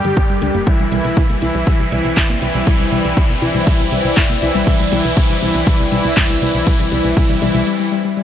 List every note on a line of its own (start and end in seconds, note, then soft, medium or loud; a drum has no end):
0.00 0.57 G3 medium
0.00 0.63 G3 medium
0.00 0.63 D4 medium
0.00 0.57 G4 loud
0.00 0.63 G4 medium
0.00 0.63 A4 medium
0.00 0.63 A#4 medium
0.00 riser medium
0.04 0.14 G2 medium
0.04 0.16 D3 medium
0.04 closed hi-hat soft
0.17 0.27 G1 loud
0.17 0.25 G4 loud
0.17 kick loud
0.17 closed hi-hat medium
0.29 0.39 G1 medium
0.29 0.34 G3 medium
0.29 closed hi-hat soft
0.42 0.52 D2 medium
0.42 0.50 D4 medium
0.42 open hi-hat loud
0.55 0.64 G1 medium
0.55 0.66 A#3 medium
0.55 closed hi-hat soft
0.67 0.77 C2 loud
0.67 0.84 E3 medium
0.67 0.75 G3 medium
0.67 7.63 C4 medium
0.67 0.84 E4 medium
0.67 7.63 C5 medium
0.67 7.63 D5 medium
0.67 7.63 E5 medium
0.67 7.63 G5 medium
0.67 kick loud
0.67 closed hi-hat medium
0.80 0.89 C2 medium
0.80 0.87 G3 medium
0.80 closed hi-hat soft
0.92 1.02 C2 loud
0.92 1.26 E3 medium
0.92 1.04 G3 medium
0.92 1.26 E4 medium
0.92 open hi-hat loud
1.05 1.14 C2 medium
1.05 closed hi-hat soft
1.17 1.27 C2 loud
1.17 1.22 E4 medium
1.17 kick loud
1.17 closed hi-hat medium
1.30 1.39 C2 medium
1.30 1.37 A#3 medium
1.30 closed hi-hat soft
1.42 1.52 C2 medium
1.42 1.65 E3 medium
1.42 1.47 E4 medium
1.42 1.65 E4 medium
1.42 open hi-hat loud
1.55 1.64 C2 medium
1.55 1.65 G3 medium
1.55 closed hi-hat soft
1.67 1.77 C2 loud
1.67 1.84 E3 medium
1.67 1.75 G3 medium
1.67 1.84 E4 loud
1.67 kick loud
1.67 closed hi-hat medium
1.80 1.89 C2 medium
1.80 1.87 G3 medium
1.80 closed hi-hat soft
1.92 2.02 C2 medium
1.92 2.26 E3 medium
1.92 2.04 G3 medium
1.92 2.26 E4 medium
1.92 open hi-hat loud
2.05 2.14 C2 medium
2.05 closed hi-hat soft
2.17 2.27 G1 loud
2.17 2.22 E4 medium
2.17 kick loud
2.17 clap loud
2.17 closed hi-hat medium
2.30 2.39 C2 medium
2.30 2.37 A#3 medium
2.30 closed hi-hat soft
2.42 2.52 C2 medium
2.42 2.65 E3 medium
2.42 2.47 E4 medium
2.42 2.65 E4 medium
2.42 open hi-hat loud
2.55 2.64 C2 medium
2.55 2.65 G3 medium
2.55 closed hi-hat soft
2.67 2.77 C2 loud
2.67 2.84 E3 medium
2.67 2.75 G3 medium
2.67 2.84 E4 medium
2.67 kick loud
2.67 closed hi-hat medium
2.80 2.89 C2 medium
2.80 2.87 G3 medium
2.80 closed hi-hat soft
2.92 3.02 C2 medium
2.92 3.26 E3 medium
2.92 3.04 G3 medium
2.92 3.26 E4 medium
2.92 open hi-hat loud
3.05 3.14 C2 medium
3.05 closed hi-hat soft
3.17 3.27 C2 loud
3.17 3.22 E4 loud
3.17 kick loud
3.17 closed hi-hat medium
3.30 3.39 C2 medium
3.30 3.37 A#3 medium
3.30 closed hi-hat soft
3.42 3.52 C2 medium
3.42 3.65 E3 medium
3.42 3.65 E4 medium
3.42 3.47 E4 medium
3.42 open hi-hat loud
3.55 3.64 C2 medium
3.55 3.65 G3 medium
3.55 closed hi-hat soft
3.67 3.77 C2 loud
3.67 3.84 E3 medium
3.67 3.75 G3 medium
3.67 3.84 E4 loud
3.67 kick loud
3.67 closed hi-hat medium
3.80 3.89 C2 medium
3.80 3.87 G3 medium
3.80 closed hi-hat soft
3.92 4.02 C2 medium
3.92 4.26 E3 medium
3.92 4.04 G3 medium
3.92 4.26 E4 medium
3.92 open hi-hat loud
4.05 4.14 C2 medium
4.05 closed hi-hat soft
4.17 4.27 G1 loud
4.17 4.22 E4 medium
4.17 kick loud
4.17 clap loud
4.17 closed hi-hat medium
4.30 4.39 C2 medium
4.30 4.37 A#3 medium
4.30 closed hi-hat soft
4.42 4.52 C2 medium
4.42 4.65 E3 medium
4.42 4.65 E4 medium
4.42 4.47 E4 medium
4.42 open hi-hat loud
4.55 4.64 C2 medium
4.55 4.65 G3 medium
4.55 closed hi-hat soft
4.67 4.77 C2 loud
4.67 4.84 E3 medium
4.67 4.84 E4 medium
4.67 kick loud
4.67 closed hi-hat medium
4.80 4.89 C2 medium
4.80 4.87 G3 medium
4.80 closed hi-hat soft
4.92 5.02 C2 loud
4.92 5.15 E3 medium
4.92 5.04 G3 medium
4.92 5.15 E4 medium
4.92 open hi-hat loud
5.04 5.14 C2 medium
5.04 closed hi-hat soft
5.17 5.27 C2 loud
5.17 5.34 E3 medium
5.17 5.25 G3 medium
5.17 5.34 E4 loud
5.17 kick loud
5.17 closed hi-hat medium
5.29 5.39 C2 medium
5.29 5.37 G3 medium
5.29 closed hi-hat soft
5.42 5.52 C2 medium
5.42 5.65 E3 medium
5.42 5.54 G3 medium
5.42 5.65 E4 medium
5.42 open hi-hat medium
5.54 5.64 C2 medium
5.54 closed hi-hat soft
5.67 5.77 C2 loud
5.67 5.84 E3 medium
5.67 5.75 G3 medium
5.67 5.84 E4 loud
5.67 kick loud
5.67 closed hi-hat medium
5.79 5.89 C2 medium
5.79 5.87 G3 medium
5.79 closed hi-hat soft
5.92 6.02 C2 loud
5.92 6.15 E3 medium
5.92 6.04 G3 medium
5.92 6.15 E4 loud
5.92 open hi-hat loud
6.04 6.14 C2 medium
6.04 closed hi-hat soft
6.17 6.27 G1 loud
6.17 6.34 E3 medium
6.17 6.25 G3 medium
6.17 6.34 E4 loud
6.17 kick loud
6.17 clap loud
6.17 closed hi-hat medium
6.30 6.39 C2 medium
6.30 6.37 G3 medium
6.30 closed hi-hat soft
6.42 6.52 C2 loud
6.42 6.65 E3 medium
6.42 6.53 G3 medium
6.42 6.65 E4 medium
6.42 open hi-hat loud
6.54 6.64 C2 medium
6.54 closed hi-hat soft
6.67 6.77 C2 loud
6.67 6.84 E3 medium
6.67 6.75 G3 medium
6.67 6.84 E4 medium
6.67 kick loud
6.67 closed hi-hat medium
6.79 6.89 C2 medium
6.79 6.87 G3 medium
6.79 closed hi-hat soft
6.92 7.02 C2 loud
6.92 7.09 E3 medium
6.92 7.00 G3 medium
6.92 7.09 E4 loud
6.92 open hi-hat medium
7.04 7.14 C2 medium
7.04 7.12 G3 medium
7.04 closed hi-hat medium
7.17 7.27 C2 loud
7.17 7.34 E3 medium
7.17 7.25 G3 medium
7.17 7.34 E4 loud
7.17 kick loud
7.17 closed hi-hat medium
7.30 7.39 C2 medium
7.30 7.37 G3 medium
7.30 closed hi-hat soft
7.42 7.52 C2 loud
7.42 7.59 E3 medium
7.42 7.50 G3 medium
7.42 7.59 E4 loud
7.42 open hi-hat loud
7.55 7.64 C2 medium
7.55 7.62 G3 medium
7.55 closed hi-hat soft
7.67 7.75 G3 medium
7.80 7.87 G3 medium
7.92 8.00 G3 medium
8.05 8.12 G3 medium
8.17 8.23 G3 medium